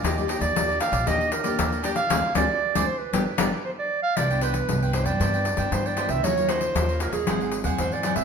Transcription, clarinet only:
0, 0, Header, 1, 2, 480
1, 0, Start_track
1, 0, Tempo, 516351
1, 39, Time_signature, 4, 2, 24, 8
1, 7662, End_track
2, 0, Start_track
2, 0, Title_t, "Clarinet"
2, 0, Program_c, 0, 71
2, 386, Note_on_c, 0, 74, 96
2, 726, Note_off_c, 0, 74, 0
2, 751, Note_on_c, 0, 77, 103
2, 1000, Note_on_c, 0, 75, 93
2, 1014, Note_off_c, 0, 77, 0
2, 1230, Note_on_c, 0, 70, 84
2, 1244, Note_off_c, 0, 75, 0
2, 1705, Note_off_c, 0, 70, 0
2, 1711, Note_on_c, 0, 74, 85
2, 1766, Note_off_c, 0, 74, 0
2, 1821, Note_on_c, 0, 77, 111
2, 2163, Note_off_c, 0, 77, 0
2, 2188, Note_on_c, 0, 74, 109
2, 2658, Note_on_c, 0, 72, 89
2, 2672, Note_off_c, 0, 74, 0
2, 2772, Note_on_c, 0, 71, 79
2, 2786, Note_off_c, 0, 72, 0
2, 3384, Note_off_c, 0, 71, 0
2, 3394, Note_on_c, 0, 72, 90
2, 3448, Note_off_c, 0, 72, 0
2, 3524, Note_on_c, 0, 74, 92
2, 3735, Note_off_c, 0, 74, 0
2, 3741, Note_on_c, 0, 77, 105
2, 3875, Note_on_c, 0, 74, 101
2, 3889, Note_off_c, 0, 77, 0
2, 4109, Note_on_c, 0, 71, 89
2, 4123, Note_off_c, 0, 74, 0
2, 4583, Note_off_c, 0, 71, 0
2, 4589, Note_on_c, 0, 72, 85
2, 4701, Note_on_c, 0, 74, 106
2, 4715, Note_off_c, 0, 72, 0
2, 5309, Note_off_c, 0, 74, 0
2, 5327, Note_on_c, 0, 72, 89
2, 5454, Note_on_c, 0, 74, 86
2, 5468, Note_off_c, 0, 72, 0
2, 5670, Note_on_c, 0, 76, 101
2, 5684, Note_off_c, 0, 74, 0
2, 5804, Note_on_c, 0, 73, 105
2, 5818, Note_off_c, 0, 76, 0
2, 6041, Note_on_c, 0, 72, 98
2, 6055, Note_off_c, 0, 73, 0
2, 6513, Note_off_c, 0, 72, 0
2, 6518, Note_on_c, 0, 70, 73
2, 6621, Note_off_c, 0, 70, 0
2, 6626, Note_on_c, 0, 68, 93
2, 7087, Note_off_c, 0, 68, 0
2, 7245, Note_on_c, 0, 72, 89
2, 7371, Note_on_c, 0, 74, 89
2, 7385, Note_off_c, 0, 72, 0
2, 7580, Note_off_c, 0, 74, 0
2, 7586, Note_on_c, 0, 76, 96
2, 7662, Note_off_c, 0, 76, 0
2, 7662, End_track
0, 0, End_of_file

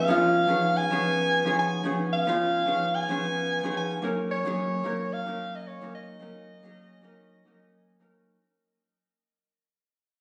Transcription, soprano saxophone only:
0, 0, Header, 1, 2, 480
1, 0, Start_track
1, 0, Key_signature, -6, "minor"
1, 0, Tempo, 545455
1, 1630, Time_signature, 4, 2, 24, 8
1, 8977, End_track
2, 0, Start_track
2, 0, Title_t, "Soprano saxophone"
2, 0, Program_c, 0, 64
2, 0, Note_on_c, 0, 77, 99
2, 677, Note_on_c, 0, 80, 116
2, 691, Note_off_c, 0, 77, 0
2, 1394, Note_off_c, 0, 80, 0
2, 1400, Note_on_c, 0, 80, 92
2, 1619, Note_off_c, 0, 80, 0
2, 1874, Note_on_c, 0, 77, 102
2, 2598, Note_on_c, 0, 80, 120
2, 2611, Note_off_c, 0, 77, 0
2, 3314, Note_off_c, 0, 80, 0
2, 3320, Note_on_c, 0, 80, 89
2, 3539, Note_off_c, 0, 80, 0
2, 3793, Note_on_c, 0, 73, 103
2, 4518, Note_on_c, 0, 77, 123
2, 4531, Note_off_c, 0, 73, 0
2, 4889, Note_on_c, 0, 75, 105
2, 4903, Note_off_c, 0, 77, 0
2, 4994, Note_on_c, 0, 73, 94
2, 5007, Note_off_c, 0, 75, 0
2, 5229, Note_off_c, 0, 73, 0
2, 5234, Note_on_c, 0, 75, 103
2, 7117, Note_off_c, 0, 75, 0
2, 8977, End_track
0, 0, End_of_file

